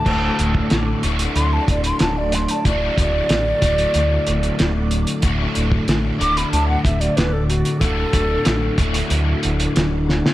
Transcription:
<<
  \new Staff \with { instrumentName = "Flute" } { \time 4/4 \key d \major \tempo 4 = 93 a''4. r8 c'''16 a''16 d''16 c'''16 a''16 d''16 c'''16 a''16 | d''8 d''2. r8 | r4. d'''16 b''16 a''16 fis''16 e''16 d''16 b'16 a'16 fis'8 | a'2 r2 | }
  \new Staff \with { instrumentName = "String machine" } { \time 4/4 \key d \major <fis a d''>1~ | <fis a d''>1~ | <fis a d''>1~ | <fis a d''>1 | }
  \new Staff \with { instrumentName = "Overdriven electric guitar" } { \clef bass \time 4/4 \key d \major <d, a, d a fis'>4. <d, a, d a fis'>2~ <d, a, d a fis'>8 | <d, a, d a fis'>4. <d, a, d a fis'>2~ <d, a, d a fis'>8 | <d, a, d a fis'>4. <d, a, d a fis'>2~ <d, a, d a fis'>8 | <d, a, d a fis'>4. <d, a, d a fis'>2~ <d, a, d a fis'>8 | }
  \new Staff \with { instrumentName = "Fingered electric bass" } { \clef bass \time 4/4 \key d \major d,,8 d,,8 a,,8 d,,8 d,8 d,,8 d,,4 | d,,8 d,,8 a,,8 d,,8 d,8 d,,8 d,,4 | d,,8 d,,8 a,,8 d,,8 d,8 d,,8 d,,4 | d,,8 d,,8 a,,8 d,,8 d,8 d,,8 d,,4 | }
  \new DrumStaff \with { instrumentName = "Drums" } \drummode { \time 4/4 <cymc bd>8 hh16 bd16 <hh sn>8 hh16 hh16 hh8 <hh bd>16 hh16 <hh sn>8 <hh sn>16 hh16 | <hh bd>8 <hh bd>8 <hh sn>8 <hh bd>16 hh16 hh8 hh16 hh16 <hh sn>8 hh16 hh16 | <hh bd>8 hh16 bd16 <hh sn>8 hh16 hh16 hh8 <hh bd>16 hh16 <hh sn>8 hh16 hh16 | <hh bd>8 <hh bd>8 <hh sn>8 <hh bd>16 hh16 hh8 hh16 hh16 <hh sn>8 sn16 sn16 | }
>>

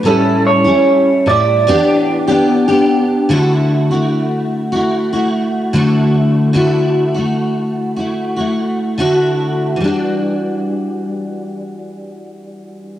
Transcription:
<<
  \new Staff \with { instrumentName = "Clean electric guitar" } { \time 4/4 \key d \mixolydian \tempo 4 = 74 a'8 cis''4 d''2 r8 | r1 | r1 | r1 | }
  \new Staff \with { instrumentName = "Steel-string acoustic guitar" } { \time 4/4 \key d \mixolydian <a, g cis' e'>8. <g cis' e'>8. <a, g e'>8 <e b d' g'>8. <b d' g'>8 <b d' g'>8. | <d a e' fis'>8. <a e' fis'>4 <a e' fis'>8 <a e' fis'>8. <d a e' fis'>4 | <d a e' fis'>8. <a e' fis'>4 <a e' fis'>8 <a e' fis'>8. <d a e' fis'>4 | <e g d' fis'>1 | }
>>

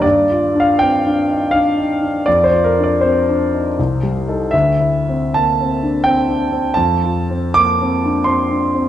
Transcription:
\new Staff \with { instrumentName = "Grand piano" } { \time 3/4 \key g \minor \tempo 4 = 80 << { d''8. f''16 g''4 f''4 | d''16 c''16 bes'16 d''16 c''4. r8 | e''4 a''4 g''4 | a''4 d'''4 c'''4 | } \\ { \tuplet 3/2 { g,8 f'8 d'8 c'8 d'8 ees'8 d'8 ees'8 d'8 } | \tuplet 3/2 { f,8 f'8 d'8 c'8 d'8 ees'8 c,8 g8 <ees' a'>8 } | \tuplet 3/2 { d,8 e'8 c'8 bes8 c'8 d'8 c'8 d'8 c'8 } | \tuplet 3/2 { f,8 f'8 c'8 bes8 c'8 d'8 c'8 d'8 c'8 } | } >> }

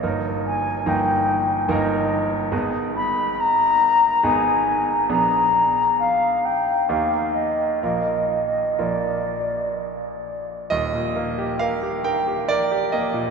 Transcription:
<<
  \new Staff \with { instrumentName = "Flute" } { \time 3/4 \key ees \major \tempo 4 = 69 r8 aes''8 g''4 ees''4 | r8 ces'''8 bes''4 aes''4 | bes''4 f''8 g''8 f''8 ees''8 | ees''4 d''4 r4 |
r2. | }
  \new Staff \with { instrumentName = "Grand piano" } { \time 3/4 \key ees \major << { <g,, bes ees' bes'>4 <g,, bes ees' bes'>4 <g,, bes ees' bes'>4 | <aes,, ces' ees' aes'>2 <aes,, ces' ees' aes'>4 | <bes,, ces' d' aes'>2 <ees, bes ees' g'>4 | <bes,, bes f' bes'>4 <bes,, bes f' bes'>2 |
ees''4 f''8 g''8 d''8 ees''8 | } \\ { r2. | r2. | r2. | r2. |
<ees,, ees,>16 bes,16 bes16 g'16 bes'16 g'16 bes'16 g'16 bes'16 g'16 bes16 bes,16 | } >> }
>>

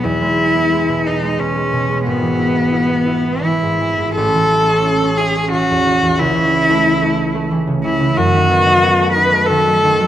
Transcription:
<<
  \new Staff \with { instrumentName = "Cello" } { \time 3/4 \key e \major \tempo 4 = 89 e'4. dis'8 cis'4 | b2 e'4 | a'4. gis'8 fis'4 | e'2 r8 e'8 |
\key b \phrygian fis'4. b'8 a'4 | }
  \new Staff \with { instrumentName = "Harp" } { \time 3/4 \key e \major <b' b''>2.~ | <b' b''>2. | r2. | r2. |
\key b \phrygian r2. | }
  \new Staff \with { instrumentName = "Harp" } { \clef bass \time 3/4 \key e \major <e, b>16 gis16 e'16 b16 gis16 b,16 b16 gis16 b,16 gis16 b,16 gis16 | gis,,16 e16 e'16 b16 e'16 b16 e'16 b16 e16 gis,16 e16 gis,16 | a,,16 e16 e'16 cis'16 e'16 cis'16 e'16 cis'16 e16 e,16 e16 e,16 | cis,16 e16 e'16 a16 e'16 a16 e'16 a16 e16 cis16 e16 cis16 |
\key b \phrygian fis,16 dis16 b16 dis'16 b16 a16 dis'16 a16 dis16 fis16 dis16 fis16 | }
>>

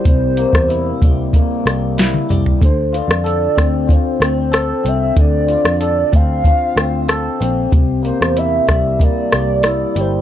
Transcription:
<<
  \new Staff \with { instrumentName = "Soft synth lead" } { \time 4/4 \key d \minor \tempo 4 = 94 c''2 r2 | c''8 d''4. c''4. e''8 | d''4. f''2 r8 | r8 c''8 e''4 d''4. c''8 | }
  \new Staff \with { instrumentName = "Clean electric guitar" } { \time 4/4 \key d \minor <c g bes e'>8 bes8 e'8 g8 bes8 g8 e'8 g8 | d8 f'8 a'8 c'8 f'8 c'8 a'8 c'8 | d8 f'8 a'8 c'8 f'8 c'8 a'8 c'8 | c8 bes8 e'8 g8 bes8 g8 e'8 g8 | }
  \new Staff \with { instrumentName = "Picked electric bass" } { \clef bass \time 4/4 \key d \minor c,8. e,8. c,8. r16 c,4 c,8 | d,8. f,8. d,8. r16 d,4 c,8 | d,8. f,8. d,8. r16 d,4 bes,,8 | c,8. e,8. c,8. r16 c,4 g,,8 | }
  \new DrumStaff \with { instrumentName = "Drums" } \drummode { \time 4/4 <hh bd>8 hh16 <bd ss>16 hh8 <hh bd>8 <hh bd>8 <hh ss>8 <hh sn>16 tommh16 <hh toml>16 tomfh16 | <hh bd>8 hh16 ss16 hh8 <hh bd ss>8 <hh bd>8 <hh ss>8 <hh ss>8 hh8 | <hh bd>8 hh16 ss16 hh8 <hh bd>8 <hh bd>8 <hh ss>8 <hh ss>8 hh8 | <hh bd>8 hh16 ss16 hh8 <hh bd ss>8 <hh bd>8 <hh ss>8 <hh ss>8 hh8 | }
>>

